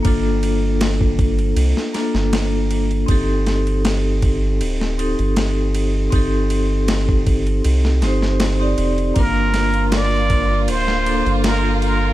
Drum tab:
RD |x-x-x-xxx-x-x-xx|x-xxx-x-x-xxx-x-|x-x-x-xxx-x-x-xx|x-xxx-x-x-xxx-x-|
SD |----o----oooo---|--o-o----o--o---|----o----oooo---|--o-o----o--o---|
BD |o----oo---------|o-----o---------|o----oo---------|o-----o---------|